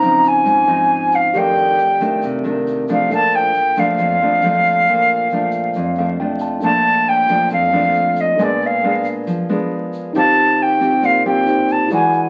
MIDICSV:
0, 0, Header, 1, 5, 480
1, 0, Start_track
1, 0, Key_signature, -2, "major"
1, 0, Tempo, 439883
1, 1467, Time_signature, 4, 2, 24, 8
1, 13414, End_track
2, 0, Start_track
2, 0, Title_t, "Flute"
2, 0, Program_c, 0, 73
2, 0, Note_on_c, 0, 82, 90
2, 304, Note_on_c, 0, 80, 95
2, 320, Note_off_c, 0, 82, 0
2, 1255, Note_on_c, 0, 77, 74
2, 1271, Note_off_c, 0, 80, 0
2, 1503, Note_on_c, 0, 79, 87
2, 1519, Note_off_c, 0, 77, 0
2, 2447, Note_off_c, 0, 79, 0
2, 3192, Note_on_c, 0, 77, 77
2, 3396, Note_off_c, 0, 77, 0
2, 3425, Note_on_c, 0, 81, 96
2, 3658, Note_on_c, 0, 79, 91
2, 3675, Note_off_c, 0, 81, 0
2, 4139, Note_on_c, 0, 77, 88
2, 4155, Note_off_c, 0, 79, 0
2, 6767, Note_off_c, 0, 77, 0
2, 7243, Note_on_c, 0, 81, 101
2, 7732, Note_on_c, 0, 79, 88
2, 7748, Note_off_c, 0, 81, 0
2, 8202, Note_off_c, 0, 79, 0
2, 8213, Note_on_c, 0, 77, 92
2, 8955, Note_on_c, 0, 75, 76
2, 8972, Note_off_c, 0, 77, 0
2, 9204, Note_on_c, 0, 74, 81
2, 9221, Note_off_c, 0, 75, 0
2, 9451, Note_on_c, 0, 77, 72
2, 9468, Note_off_c, 0, 74, 0
2, 9901, Note_off_c, 0, 77, 0
2, 11099, Note_on_c, 0, 81, 105
2, 11591, Note_on_c, 0, 79, 88
2, 11607, Note_off_c, 0, 81, 0
2, 12059, Note_on_c, 0, 77, 80
2, 12076, Note_off_c, 0, 79, 0
2, 12282, Note_off_c, 0, 77, 0
2, 12298, Note_on_c, 0, 79, 82
2, 12787, Note_on_c, 0, 81, 79
2, 12804, Note_off_c, 0, 79, 0
2, 13005, Note_off_c, 0, 81, 0
2, 13023, Note_on_c, 0, 80, 81
2, 13414, Note_off_c, 0, 80, 0
2, 13414, End_track
3, 0, Start_track
3, 0, Title_t, "Tine electric piano"
3, 0, Program_c, 1, 4
3, 0, Control_c, 1, 64, 127
3, 0, Note_on_c, 1, 61, 50
3, 0, Note_on_c, 1, 63, 52
3, 0, Note_on_c, 1, 72, 48
3, 0, Note_on_c, 1, 77, 56
3, 1417, Note_off_c, 1, 63, 0
3, 1424, Note_off_c, 1, 72, 0
3, 1437, Note_off_c, 1, 61, 0
3, 1451, Note_off_c, 1, 77, 0
3, 1457, Note_on_c, 1, 67, 42
3, 1472, Note_on_c, 1, 69, 38
3, 1482, Control_c, 1, 64, 0
3, 1489, Note_on_c, 1, 74, 41
3, 1507, Note_on_c, 1, 77, 49
3, 1698, Control_c, 1, 64, 127
3, 3347, Note_off_c, 1, 67, 0
3, 3354, Note_off_c, 1, 69, 0
3, 3363, Note_off_c, 1, 74, 0
3, 3370, Note_on_c, 1, 62, 44
3, 3372, Note_off_c, 1, 77, 0
3, 3389, Note_on_c, 1, 69, 42
3, 3405, Control_c, 1, 64, 0
3, 3414, Note_on_c, 1, 58, 38
3, 3438, Note_on_c, 1, 77, 53
3, 3601, Control_c, 1, 64, 127
3, 6522, Note_off_c, 1, 77, 0
3, 6535, Note_on_c, 1, 77, 47
3, 6748, Note_off_c, 1, 77, 0
3, 6764, Note_on_c, 1, 79, 46
3, 6982, Note_off_c, 1, 79, 0
3, 7000, Note_on_c, 1, 81, 46
3, 7179, Note_off_c, 1, 62, 0
3, 7189, Note_off_c, 1, 69, 0
3, 7202, Note_off_c, 1, 58, 0
3, 7205, Note_on_c, 1, 62, 45
3, 7220, Note_off_c, 1, 81, 0
3, 7226, Note_on_c, 1, 69, 38
3, 7244, Note_on_c, 1, 58, 42
3, 7245, Control_c, 1, 64, 0
3, 7267, Note_on_c, 1, 77, 50
3, 7437, Control_c, 1, 64, 127
3, 9099, Note_off_c, 1, 62, 0
3, 9110, Note_off_c, 1, 69, 0
3, 9119, Note_off_c, 1, 58, 0
3, 9123, Note_on_c, 1, 62, 46
3, 9131, Note_off_c, 1, 77, 0
3, 9141, Note_on_c, 1, 70, 43
3, 9162, Note_on_c, 1, 71, 43
3, 9166, Control_c, 1, 64, 0
3, 9179, Note_on_c, 1, 80, 51
3, 9377, Control_c, 1, 64, 127
3, 11016, Note_off_c, 1, 62, 0
3, 11025, Note_off_c, 1, 70, 0
3, 11036, Note_off_c, 1, 71, 0
3, 11045, Note_off_c, 1, 80, 0
3, 11055, Note_on_c, 1, 63, 46
3, 11077, Note_on_c, 1, 67, 41
3, 11081, Control_c, 1, 64, 0
3, 11096, Note_on_c, 1, 72, 39
3, 11124, Note_on_c, 1, 77, 50
3, 11284, Control_c, 1, 64, 127
3, 12470, Note_off_c, 1, 63, 0
3, 12481, Note_off_c, 1, 67, 0
3, 12491, Note_off_c, 1, 72, 0
3, 12505, Note_off_c, 1, 77, 0
3, 12510, Note_on_c, 1, 63, 32
3, 12524, Note_on_c, 1, 67, 29
3, 12531, Note_on_c, 1, 72, 30
3, 12542, Note_on_c, 1, 77, 35
3, 12963, Note_on_c, 1, 64, 45
3, 12986, Note_off_c, 1, 63, 0
3, 12987, Note_on_c, 1, 68, 41
3, 12994, Note_off_c, 1, 67, 0
3, 12997, Note_off_c, 1, 72, 0
3, 12998, Control_c, 1, 64, 0
3, 13003, Note_off_c, 1, 77, 0
3, 13004, Note_on_c, 1, 74, 42
3, 13028, Note_on_c, 1, 78, 50
3, 13212, Control_c, 1, 64, 127
3, 13414, Note_off_c, 1, 64, 0
3, 13414, Note_off_c, 1, 68, 0
3, 13414, Note_off_c, 1, 74, 0
3, 13414, Note_off_c, 1, 78, 0
3, 13414, End_track
4, 0, Start_track
4, 0, Title_t, "Nylon-string guitar"
4, 0, Program_c, 2, 24
4, 0, Note_on_c, 2, 49, 56
4, 21, Note_on_c, 2, 53, 52
4, 26, Note_on_c, 2, 60, 50
4, 32, Note_on_c, 2, 63, 53
4, 479, Note_off_c, 2, 49, 0
4, 489, Note_on_c, 2, 44, 67
4, 706, Note_off_c, 2, 53, 0
4, 708, Note_off_c, 2, 60, 0
4, 711, Note_off_c, 2, 63, 0
4, 729, Note_on_c, 2, 53, 45
4, 736, Note_on_c, 2, 60, 51
4, 747, Note_on_c, 2, 63, 55
4, 1420, Note_off_c, 2, 53, 0
4, 1424, Note_off_c, 2, 60, 0
4, 1429, Note_off_c, 2, 63, 0
4, 1435, Note_off_c, 2, 44, 0
4, 1470, Note_on_c, 2, 51, 48
4, 1471, Note_on_c, 2, 41, 55
4, 1471, Note_on_c, 2, 57, 47
4, 1481, Note_on_c, 2, 62, 50
4, 1946, Note_off_c, 2, 51, 0
4, 1948, Note_off_c, 2, 57, 0
4, 1950, Note_off_c, 2, 62, 0
4, 2185, Note_on_c, 2, 51, 52
4, 2193, Note_on_c, 2, 57, 60
4, 2200, Note_on_c, 2, 62, 62
4, 2407, Note_off_c, 2, 41, 0
4, 2439, Note_on_c, 2, 48, 60
4, 2630, Note_off_c, 2, 51, 0
4, 2631, Note_off_c, 2, 57, 0
4, 2636, Note_off_c, 2, 62, 0
4, 2662, Note_on_c, 2, 51, 54
4, 2671, Note_on_c, 2, 57, 51
4, 2679, Note_on_c, 2, 62, 55
4, 3108, Note_off_c, 2, 51, 0
4, 3112, Note_off_c, 2, 57, 0
4, 3116, Note_off_c, 2, 62, 0
4, 3154, Note_on_c, 2, 53, 57
4, 3156, Note_on_c, 2, 57, 55
4, 3159, Note_on_c, 2, 62, 65
4, 3371, Note_off_c, 2, 48, 0
4, 3389, Note_on_c, 2, 46, 64
4, 3835, Note_off_c, 2, 53, 0
4, 3835, Note_off_c, 2, 57, 0
4, 3836, Note_off_c, 2, 62, 0
4, 4111, Note_on_c, 2, 53, 58
4, 4116, Note_on_c, 2, 57, 54
4, 4117, Note_on_c, 2, 62, 66
4, 4327, Note_off_c, 2, 46, 0
4, 4357, Note_on_c, 2, 41, 64
4, 4554, Note_off_c, 2, 53, 0
4, 4555, Note_off_c, 2, 57, 0
4, 4556, Note_off_c, 2, 62, 0
4, 4605, Note_on_c, 2, 53, 53
4, 4609, Note_on_c, 2, 57, 57
4, 4617, Note_on_c, 2, 62, 56
4, 4800, Note_off_c, 2, 53, 0
4, 4802, Note_off_c, 2, 57, 0
4, 4806, Note_off_c, 2, 62, 0
4, 4839, Note_on_c, 2, 53, 51
4, 4849, Note_on_c, 2, 57, 54
4, 4855, Note_on_c, 2, 62, 58
4, 5291, Note_off_c, 2, 41, 0
4, 5329, Note_on_c, 2, 46, 57
4, 5759, Note_off_c, 2, 53, 0
4, 5761, Note_off_c, 2, 57, 0
4, 5766, Note_off_c, 2, 62, 0
4, 5807, Note_on_c, 2, 53, 54
4, 5814, Note_on_c, 2, 57, 48
4, 5816, Note_on_c, 2, 62, 50
4, 6257, Note_off_c, 2, 46, 0
4, 6283, Note_on_c, 2, 41, 66
4, 6483, Note_off_c, 2, 53, 0
4, 6484, Note_off_c, 2, 57, 0
4, 6486, Note_off_c, 2, 62, 0
4, 6528, Note_on_c, 2, 53, 56
4, 6537, Note_on_c, 2, 57, 51
4, 6540, Note_on_c, 2, 62, 54
4, 6722, Note_off_c, 2, 53, 0
4, 6727, Note_off_c, 2, 57, 0
4, 6727, Note_off_c, 2, 62, 0
4, 6764, Note_on_c, 2, 53, 49
4, 6773, Note_on_c, 2, 57, 47
4, 6776, Note_on_c, 2, 62, 52
4, 7200, Note_off_c, 2, 53, 0
4, 7205, Note_off_c, 2, 57, 0
4, 7205, Note_off_c, 2, 62, 0
4, 7214, Note_off_c, 2, 41, 0
4, 7236, Note_on_c, 2, 46, 60
4, 7238, Note_on_c, 2, 53, 44
4, 7245, Note_on_c, 2, 57, 46
4, 7250, Note_on_c, 2, 62, 58
4, 7915, Note_off_c, 2, 53, 0
4, 7920, Note_off_c, 2, 57, 0
4, 7923, Note_off_c, 2, 62, 0
4, 7952, Note_on_c, 2, 53, 55
4, 7957, Note_on_c, 2, 57, 49
4, 7961, Note_on_c, 2, 62, 60
4, 8171, Note_off_c, 2, 46, 0
4, 8202, Note_on_c, 2, 41, 63
4, 8395, Note_off_c, 2, 53, 0
4, 8396, Note_off_c, 2, 57, 0
4, 8396, Note_off_c, 2, 62, 0
4, 8432, Note_on_c, 2, 53, 52
4, 8440, Note_on_c, 2, 57, 56
4, 8443, Note_on_c, 2, 62, 60
4, 9113, Note_off_c, 2, 53, 0
4, 9117, Note_off_c, 2, 62, 0
4, 9118, Note_off_c, 2, 57, 0
4, 9132, Note_off_c, 2, 41, 0
4, 9152, Note_on_c, 2, 46, 56
4, 9152, Note_on_c, 2, 56, 46
4, 9156, Note_on_c, 2, 59, 53
4, 9159, Note_on_c, 2, 62, 55
4, 9592, Note_off_c, 2, 56, 0
4, 9594, Note_off_c, 2, 59, 0
4, 9594, Note_off_c, 2, 62, 0
4, 9647, Note_on_c, 2, 56, 49
4, 9649, Note_on_c, 2, 59, 47
4, 9651, Note_on_c, 2, 62, 56
4, 10088, Note_off_c, 2, 46, 0
4, 10116, Note_on_c, 2, 53, 65
4, 10320, Note_off_c, 2, 56, 0
4, 10320, Note_off_c, 2, 59, 0
4, 10322, Note_off_c, 2, 62, 0
4, 10359, Note_on_c, 2, 56, 51
4, 10361, Note_on_c, 2, 59, 56
4, 10366, Note_on_c, 2, 62, 58
4, 11035, Note_off_c, 2, 56, 0
4, 11035, Note_off_c, 2, 59, 0
4, 11038, Note_off_c, 2, 62, 0
4, 11048, Note_off_c, 2, 53, 0
4, 11075, Note_on_c, 2, 51, 60
4, 11080, Note_on_c, 2, 65, 48
4, 11082, Note_on_c, 2, 60, 48
4, 11087, Note_on_c, 2, 67, 56
4, 11754, Note_off_c, 2, 65, 0
4, 11755, Note_off_c, 2, 60, 0
4, 11758, Note_off_c, 2, 67, 0
4, 11791, Note_on_c, 2, 60, 52
4, 11796, Note_on_c, 2, 65, 56
4, 11804, Note_on_c, 2, 67, 65
4, 12006, Note_off_c, 2, 51, 0
4, 12028, Note_on_c, 2, 46, 65
4, 12230, Note_off_c, 2, 60, 0
4, 12232, Note_off_c, 2, 65, 0
4, 12236, Note_off_c, 2, 67, 0
4, 12281, Note_on_c, 2, 60, 57
4, 12285, Note_on_c, 2, 65, 49
4, 12287, Note_on_c, 2, 67, 62
4, 12954, Note_off_c, 2, 60, 0
4, 12955, Note_off_c, 2, 65, 0
4, 12957, Note_off_c, 2, 67, 0
4, 12961, Note_off_c, 2, 46, 0
4, 12990, Note_on_c, 2, 52, 64
4, 12995, Note_on_c, 2, 56, 50
4, 12999, Note_on_c, 2, 62, 46
4, 13001, Note_on_c, 2, 66, 61
4, 13414, Note_off_c, 2, 52, 0
4, 13414, Note_off_c, 2, 56, 0
4, 13414, Note_off_c, 2, 62, 0
4, 13414, Note_off_c, 2, 66, 0
4, 13414, End_track
5, 0, Start_track
5, 0, Title_t, "Drums"
5, 20, Note_on_c, 9, 82, 49
5, 129, Note_off_c, 9, 82, 0
5, 260, Note_on_c, 9, 82, 59
5, 369, Note_off_c, 9, 82, 0
5, 495, Note_on_c, 9, 82, 54
5, 604, Note_off_c, 9, 82, 0
5, 740, Note_on_c, 9, 82, 25
5, 849, Note_off_c, 9, 82, 0
5, 1221, Note_on_c, 9, 82, 53
5, 1330, Note_off_c, 9, 82, 0
5, 1460, Note_on_c, 9, 82, 57
5, 1569, Note_off_c, 9, 82, 0
5, 1701, Note_on_c, 9, 82, 27
5, 1810, Note_off_c, 9, 82, 0
5, 1947, Note_on_c, 9, 82, 48
5, 2056, Note_off_c, 9, 82, 0
5, 2185, Note_on_c, 9, 82, 60
5, 2294, Note_off_c, 9, 82, 0
5, 2422, Note_on_c, 9, 82, 50
5, 2531, Note_off_c, 9, 82, 0
5, 2664, Note_on_c, 9, 82, 26
5, 2773, Note_off_c, 9, 82, 0
5, 2913, Note_on_c, 9, 82, 48
5, 3022, Note_off_c, 9, 82, 0
5, 3142, Note_on_c, 9, 82, 58
5, 3251, Note_off_c, 9, 82, 0
5, 3388, Note_on_c, 9, 82, 57
5, 3497, Note_off_c, 9, 82, 0
5, 3628, Note_on_c, 9, 82, 27
5, 3737, Note_off_c, 9, 82, 0
5, 3861, Note_on_c, 9, 82, 51
5, 3970, Note_off_c, 9, 82, 0
5, 4102, Note_on_c, 9, 82, 59
5, 4212, Note_off_c, 9, 82, 0
5, 4340, Note_on_c, 9, 82, 56
5, 4449, Note_off_c, 9, 82, 0
5, 4579, Note_on_c, 9, 82, 26
5, 4688, Note_off_c, 9, 82, 0
5, 4820, Note_on_c, 9, 82, 49
5, 4929, Note_off_c, 9, 82, 0
5, 5063, Note_on_c, 9, 82, 57
5, 5172, Note_off_c, 9, 82, 0
5, 5308, Note_on_c, 9, 82, 55
5, 5417, Note_off_c, 9, 82, 0
5, 5549, Note_on_c, 9, 82, 25
5, 5658, Note_off_c, 9, 82, 0
5, 5783, Note_on_c, 9, 82, 48
5, 5892, Note_off_c, 9, 82, 0
5, 6016, Note_on_c, 9, 82, 60
5, 6125, Note_off_c, 9, 82, 0
5, 6258, Note_on_c, 9, 82, 55
5, 6367, Note_off_c, 9, 82, 0
5, 6497, Note_on_c, 9, 82, 24
5, 6606, Note_off_c, 9, 82, 0
5, 6972, Note_on_c, 9, 82, 58
5, 7081, Note_off_c, 9, 82, 0
5, 7209, Note_on_c, 9, 82, 53
5, 7318, Note_off_c, 9, 82, 0
5, 7454, Note_on_c, 9, 82, 26
5, 7563, Note_off_c, 9, 82, 0
5, 7934, Note_on_c, 9, 82, 59
5, 8043, Note_off_c, 9, 82, 0
5, 8176, Note_on_c, 9, 82, 55
5, 8285, Note_off_c, 9, 82, 0
5, 8418, Note_on_c, 9, 82, 26
5, 8527, Note_off_c, 9, 82, 0
5, 8658, Note_on_c, 9, 82, 46
5, 8767, Note_off_c, 9, 82, 0
5, 8905, Note_on_c, 9, 82, 60
5, 9014, Note_off_c, 9, 82, 0
5, 9152, Note_on_c, 9, 82, 58
5, 9261, Note_off_c, 9, 82, 0
5, 9394, Note_on_c, 9, 82, 25
5, 9503, Note_off_c, 9, 82, 0
5, 9870, Note_on_c, 9, 82, 63
5, 9979, Note_off_c, 9, 82, 0
5, 10116, Note_on_c, 9, 82, 57
5, 10225, Note_off_c, 9, 82, 0
5, 10358, Note_on_c, 9, 82, 26
5, 10468, Note_off_c, 9, 82, 0
5, 10835, Note_on_c, 9, 82, 58
5, 10944, Note_off_c, 9, 82, 0
5, 11074, Note_on_c, 9, 82, 54
5, 11183, Note_off_c, 9, 82, 0
5, 11321, Note_on_c, 9, 82, 27
5, 11430, Note_off_c, 9, 82, 0
5, 11798, Note_on_c, 9, 82, 59
5, 11907, Note_off_c, 9, 82, 0
5, 12036, Note_on_c, 9, 82, 56
5, 12145, Note_off_c, 9, 82, 0
5, 12282, Note_on_c, 9, 82, 25
5, 12391, Note_off_c, 9, 82, 0
5, 12505, Note_on_c, 9, 82, 51
5, 12614, Note_off_c, 9, 82, 0
5, 12746, Note_on_c, 9, 82, 55
5, 12855, Note_off_c, 9, 82, 0
5, 12980, Note_on_c, 9, 82, 60
5, 13089, Note_off_c, 9, 82, 0
5, 13228, Note_on_c, 9, 82, 27
5, 13337, Note_off_c, 9, 82, 0
5, 13414, End_track
0, 0, End_of_file